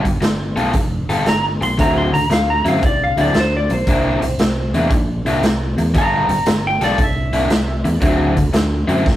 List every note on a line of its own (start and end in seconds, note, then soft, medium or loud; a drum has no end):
0.05 0.21 G1 medium
0.05 muted overdriven electric guitar stroke soft
0.05 kick medium
0.05 closed hi-hat medium
0.21 0.56 G1 medium
0.21 muted overdriven electric guitar stroke soft
0.21 snare loud
0.21 closed hi-hat medium
0.56 0.73 B1 medium
0.56 0.73 G3 medium
0.56 0.73 B3 medium
0.56 0.73 F4 medium
0.56 0.74 A4 medium
0.56 closed hi-hat medium
0.73 1.08 F1 medium
0.73 muted overdriven electric guitar stroke soft
0.73 kick loud
0.73 closed hi-hat medium
1.09 1.26 G1 medium
1.09 1.25 G3 medium
1.09 1.25 B3 medium
1.09 1.26 F4 medium
1.09 1.26 A4 medium
1.09 closed hi-hat medium
1.26 1.61 G1 medium
1.26 1.45 A#5 loud
1.26 muted overdriven electric guitar stroke soft
1.26 snare loud
1.26 closed hi-hat medium
1.61 1.78 B1 medium
1.61 1.79 C6 medium
1.61 muted overdriven electric guitar stroke soft
1.61 closed hi-hat medium
1.78 2.13 D2 loud
1.78 2.14 D3 medium
1.78 2.13 F#3 medium
1.78 2.12 C4 medium
1.78 2.12 E4 medium
1.78 1.97 A#5 medium
1.78 kick loud
1.78 closed hi-hat medium
1.98 2.13 C6 medium
2.13 2.29 D2 medium
2.13 2.30 A#5 loud
2.13 muted overdriven electric guitar stroke soft
2.13 closed hi-hat medium
2.30 2.64 D2 medium
2.30 2.49 F5 loud
2.30 muted overdriven electric guitar stroke soft
2.30 snare loud
2.30 closed hi-hat medium
2.50 2.66 A#5 medium
2.65 2.82 F#2 medium
2.65 2.81 D3 medium
2.65 2.81 F#3 medium
2.65 2.81 C4 medium
2.65 2.82 E4 medium
2.65 2.84 F5 medium
2.65 closed hi-hat medium
2.82 3.16 C2 medium
2.82 3.01 D5 medium
2.82 muted overdriven electric guitar stroke soft
2.82 kick loud
2.82 closed hi-hat medium
3.04 3.19 F5 medium
3.17 3.33 D2 medium
3.17 3.34 D3 medium
3.17 3.35 F#3 medium
3.17 3.35 C4 medium
3.17 3.35 E4 medium
3.17 closed hi-hat medium
3.21 3.36 D5 medium
3.34 3.68 D2 medium
3.34 muted overdriven electric guitar stroke soft
3.34 snare loud
3.34 closed hi-hat medium
3.40 3.54 C5 loud
3.57 3.71 D5 medium
3.69 3.86 B1 medium
3.69 4.72 C5 medium
3.69 muted overdriven electric guitar stroke soft
3.69 closed hi-hat medium
3.87 4.21 C2 loud
3.87 4.22 C3 medium
3.87 4.23 A#3 medium
3.87 4.22 D4 medium
3.87 4.22 E4 medium
3.87 kick loud
3.87 closed hi-hat medium
4.21 4.37 C2 medium
4.21 muted overdriven electric guitar stroke soft
4.21 closed hi-hat medium
4.38 4.72 C2 medium
4.38 muted overdriven electric guitar stroke soft
4.38 snare loud
4.38 closed hi-hat medium
4.73 4.90 E2 medium
4.73 4.91 C3 medium
4.73 4.91 A#3 medium
4.73 4.91 D4 medium
4.73 4.91 E4 medium
4.73 closed hi-hat medium
4.90 5.25 A#1 medium
4.90 muted overdriven electric guitar stroke soft
4.90 kick loud
4.90 closed hi-hat medium
5.25 5.41 C2 medium
5.25 5.42 C3 medium
5.25 5.43 A#3 medium
5.25 5.43 D4 medium
5.25 5.43 E4 loud
5.25 closed hi-hat medium
5.42 5.76 C2 medium
5.42 muted overdriven electric guitar stroke soft
5.42 snare loud
5.42 closed hi-hat medium
5.77 5.94 E2 medium
5.77 muted overdriven electric guitar stroke soft
5.77 closed hi-hat medium
5.94 6.28 G1 medium
5.94 6.30 G3 loud
5.94 6.30 B3 medium
5.94 6.29 F4 medium
5.94 6.29 A4 medium
5.94 6.64 A#5 loud
5.94 kick loud
5.94 closed hi-hat medium
6.29 6.45 G1 medium
6.29 muted overdriven electric guitar stroke soft
6.29 closed hi-hat medium
6.46 6.80 G1 medium
6.46 muted overdriven electric guitar stroke soft
6.46 snare loud
6.46 closed hi-hat medium
6.67 6.83 G5 medium
6.80 6.98 B1 medium
6.80 6.98 G3 medium
6.80 6.98 B3 medium
6.80 6.99 F4 medium
6.80 6.99 A4 medium
6.80 7.00 D5 medium
6.80 snare soft
6.80 closed hi-hat medium
6.98 7.32 C2 medium
6.98 muted overdriven electric guitar stroke soft
6.98 kick loud
6.98 closed hi-hat medium
7.03 8.02 E5 loud
7.33 7.50 C2 medium
7.33 7.48 C3 medium
7.33 7.49 A#3 loud
7.33 7.49 D4 medium
7.33 7.49 E4 loud
7.33 closed hi-hat medium
7.50 7.85 C2 medium
7.50 muted overdriven electric guitar stroke soft
7.50 snare loud
7.50 closed hi-hat medium
7.85 8.01 E2 medium
7.85 muted overdriven electric guitar stroke medium
7.85 closed hi-hat medium
8.01 8.36 D2 medium
8.01 8.37 D3 medium
8.01 8.36 F#3 medium
8.01 8.35 C4 medium
8.01 8.35 E4 medium
8.01 kick loud
8.01 closed hi-hat medium
8.37 8.53 D2 medium
8.37 muted overdriven electric guitar stroke soft
8.37 kick medium
8.37 closed hi-hat medium
8.53 8.87 D2 medium
8.53 muted overdriven electric guitar stroke soft
8.53 snare loud
8.53 closed hi-hat medium
8.88 9.05 F#2 medium
8.88 9.04 D3 medium
8.88 9.05 F#3 medium
8.88 9.05 C4 medium
8.88 9.05 E4 medium
8.88 closed hi-hat medium
9.05 9.16 C2 medium
9.05 muted overdriven electric guitar stroke soft
9.05 kick loud
9.05 snare medium